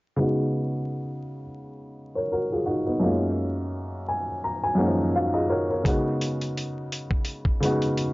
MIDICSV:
0, 0, Header, 1, 3, 480
1, 0, Start_track
1, 0, Tempo, 705882
1, 137, Time_signature, 4, 2, 24, 8
1, 5530, End_track
2, 0, Start_track
2, 0, Title_t, "Upright piano"
2, 0, Program_c, 0, 0
2, 112, Note_on_c, 0, 49, 79
2, 120, Note_on_c, 0, 56, 66
2, 129, Note_on_c, 0, 59, 64
2, 137, Note_on_c, 0, 63, 72
2, 145, Note_on_c, 0, 66, 88
2, 267, Control_c, 0, 64, 127
2, 949, Note_off_c, 0, 49, 0
2, 953, Note_off_c, 0, 56, 0
2, 958, Note_off_c, 0, 59, 0
2, 962, Note_off_c, 0, 63, 0
2, 966, Note_off_c, 0, 66, 0
2, 1464, Note_on_c, 0, 73, 54
2, 1468, Note_on_c, 0, 70, 46
2, 1566, Note_off_c, 0, 70, 0
2, 1569, Note_off_c, 0, 73, 0
2, 1576, Note_on_c, 0, 70, 64
2, 1582, Note_on_c, 0, 66, 55
2, 1702, Note_off_c, 0, 70, 0
2, 1706, Note_off_c, 0, 66, 0
2, 1714, Note_on_c, 0, 68, 56
2, 1718, Note_on_c, 0, 65, 53
2, 1806, Note_on_c, 0, 66, 66
2, 1812, Note_on_c, 0, 63, 53
2, 1814, Note_off_c, 0, 68, 0
2, 1816, Note_off_c, 0, 65, 0
2, 1935, Note_off_c, 0, 63, 0
2, 1937, Note_off_c, 0, 66, 0
2, 1945, Note_on_c, 0, 63, 59
2, 1951, Note_on_c, 0, 59, 48
2, 2038, Note_on_c, 0, 42, 72
2, 2050, Note_on_c, 0, 56, 71
2, 2058, Note_on_c, 0, 58, 72
2, 2066, Note_on_c, 0, 61, 69
2, 2067, Control_c, 0, 64, 0
2, 2073, Note_on_c, 0, 65, 76
2, 2175, Note_off_c, 0, 63, 0
2, 2178, Note_off_c, 0, 59, 0
2, 2202, Control_c, 0, 64, 127
2, 2778, Note_on_c, 0, 80, 63
2, 2872, Note_off_c, 0, 42, 0
2, 2878, Note_off_c, 0, 56, 0
2, 2882, Note_off_c, 0, 58, 0
2, 2886, Note_off_c, 0, 61, 0
2, 2890, Note_off_c, 0, 65, 0
2, 3001, Note_off_c, 0, 80, 0
2, 3020, Note_on_c, 0, 82, 61
2, 3142, Note_off_c, 0, 82, 0
2, 3152, Note_on_c, 0, 80, 69
2, 3231, Note_on_c, 0, 42, 78
2, 3244, Note_on_c, 0, 56, 69
2, 3250, Note_on_c, 0, 78, 66
2, 3251, Note_off_c, 0, 80, 0
2, 3252, Note_on_c, 0, 58, 72
2, 3257, Note_on_c, 0, 61, 72
2, 3266, Note_on_c, 0, 63, 68
2, 3310, Note_off_c, 0, 63, 0
2, 3310, Note_on_c, 0, 53, 84
2, 3476, Note_off_c, 0, 78, 0
2, 3503, Note_on_c, 0, 66, 60
2, 3505, Note_on_c, 0, 77, 70
2, 3507, Note_on_c, 0, 63, 50
2, 3523, Note_off_c, 0, 53, 0
2, 3624, Note_off_c, 0, 77, 0
2, 3626, Note_off_c, 0, 66, 0
2, 3628, Note_off_c, 0, 63, 0
2, 3629, Note_on_c, 0, 75, 66
2, 3631, Note_on_c, 0, 68, 60
2, 3634, Note_on_c, 0, 65, 52
2, 3729, Note_off_c, 0, 75, 0
2, 3732, Note_off_c, 0, 68, 0
2, 3734, Note_off_c, 0, 65, 0
2, 3735, Note_on_c, 0, 70, 64
2, 3737, Note_on_c, 0, 73, 64
2, 3738, Note_on_c, 0, 66, 54
2, 3862, Note_off_c, 0, 70, 0
2, 3863, Note_off_c, 0, 66, 0
2, 3866, Note_off_c, 0, 42, 0
2, 3867, Note_off_c, 0, 73, 0
2, 3873, Note_off_c, 0, 56, 0
2, 3877, Note_off_c, 0, 58, 0
2, 3877, Note_on_c, 0, 73, 58
2, 3879, Note_off_c, 0, 61, 0
2, 3879, Note_on_c, 0, 70, 52
2, 3967, Note_on_c, 0, 49, 75
2, 3976, Note_on_c, 0, 56, 69
2, 3985, Note_on_c, 0, 59, 70
2, 3986, Control_c, 0, 64, 0
2, 3993, Note_on_c, 0, 63, 67
2, 3999, Note_on_c, 0, 66, 90
2, 4101, Note_off_c, 0, 73, 0
2, 4103, Note_off_c, 0, 70, 0
2, 4106, Control_c, 0, 64, 127
2, 4797, Note_off_c, 0, 49, 0
2, 4801, Note_off_c, 0, 56, 0
2, 4805, Note_off_c, 0, 59, 0
2, 4810, Note_off_c, 0, 63, 0
2, 4813, Note_off_c, 0, 66, 0
2, 5170, Note_on_c, 0, 49, 83
2, 5179, Note_on_c, 0, 56, 68
2, 5187, Note_on_c, 0, 59, 68
2, 5196, Note_on_c, 0, 63, 69
2, 5203, Note_on_c, 0, 66, 84
2, 5530, Note_off_c, 0, 49, 0
2, 5530, Note_off_c, 0, 56, 0
2, 5530, Note_off_c, 0, 59, 0
2, 5530, Note_off_c, 0, 63, 0
2, 5530, Note_off_c, 0, 66, 0
2, 5530, End_track
3, 0, Start_track
3, 0, Title_t, "Drums"
3, 3978, Note_on_c, 9, 36, 95
3, 3984, Note_on_c, 9, 42, 75
3, 4046, Note_off_c, 9, 36, 0
3, 4052, Note_off_c, 9, 42, 0
3, 4225, Note_on_c, 9, 42, 56
3, 4293, Note_off_c, 9, 42, 0
3, 4362, Note_on_c, 9, 42, 30
3, 4430, Note_off_c, 9, 42, 0
3, 4471, Note_on_c, 9, 42, 58
3, 4539, Note_off_c, 9, 42, 0
3, 4707, Note_on_c, 9, 42, 57
3, 4775, Note_off_c, 9, 42, 0
3, 4832, Note_on_c, 9, 36, 97
3, 4900, Note_off_c, 9, 36, 0
3, 4928, Note_on_c, 9, 42, 74
3, 4996, Note_off_c, 9, 42, 0
3, 5066, Note_on_c, 9, 36, 81
3, 5134, Note_off_c, 9, 36, 0
3, 5187, Note_on_c, 9, 42, 56
3, 5255, Note_off_c, 9, 42, 0
3, 5317, Note_on_c, 9, 42, 34
3, 5385, Note_off_c, 9, 42, 0
3, 5423, Note_on_c, 9, 42, 58
3, 5491, Note_off_c, 9, 42, 0
3, 5530, End_track
0, 0, End_of_file